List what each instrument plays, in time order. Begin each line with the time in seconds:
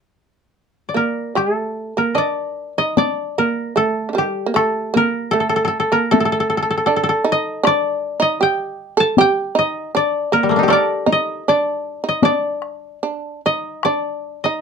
Already playing: shamisen D4
0.89 koto D5
0.94 shamisen A#3, koto A#4
1.35 shamisen G3, koto G4, taiko rim
1.52 shamisen A3, koto A4
1.97 shamisen A#3, koto A#4
2.15 shamisen D4, koto D5 D#5
2.78 shamisen D#4, koto D#5
2.97 shamisen D4, koto D5, taiko high
3.38 shamisen A#3, koto A#4
3.76 shamisen A3, koto A4
4.09 shamisen D3
4.13 shamisen D#3 G3
4.18 koto G4
4.46 shamisen A#3
4.54 shamisen A3, koto A4, taiko rim
4.94 shamisen A#3, koto A#4, taiko high
5.31 shamisen A3, koto A4
5.40 koto A4
5.49 koto A4
5.56 koto A4
5.65 koto A4
5.80 koto A4
5.92 shamisen A#3, koto A#4
6.11 shamisen A3, koto A4, taiko high
6.20 koto A4
6.25 koto A4
6.32 koto A4
6.40 koto A4
6.50 koto A4
6.57 koto A4
6.63 koto A4
6.70 koto A4
6.78 koto A4
6.86 shamisen D4, koto A4
6.96 koto A4
7.04 koto A4
7.09 koto A4
7.24 shamisen D#4
7.32 koto D#5
7.63 shamisen D4, koto D5, taiko rim
8.20 shamisen D#4, koto D#5
8.41 shamisen G4, koto G5
8.97 shamisen A4, koto A5
9.17 shamisen G4, koto G5, taiko high
9.55 shamisen D#4, koto D#5
9.95 shamisen D4, koto D5
10.32 shamisen A#3, koto A#4
10.43 koto G3
10.49 koto A3 A#3
10.56 koto D4 D#4
10.63 koto G4
10.68 shamisen D4, koto A4 A#4, taiko rim
10.73 koto D5
11.06 shamisen D#4, taiko high
11.12 koto D#5
11.48 shamisen D4, koto D5
12.04 shamisen D#4
12.09 koto D#5
12.22 shamisen D4, koto D5, taiko high
12.62 taiko rim
13.03 shamisen D4
13.46 shamisen D#4, koto D#5
13.83 shamisen D4, koto D5, taiko rim
14.44 shamisen D#4, koto D#5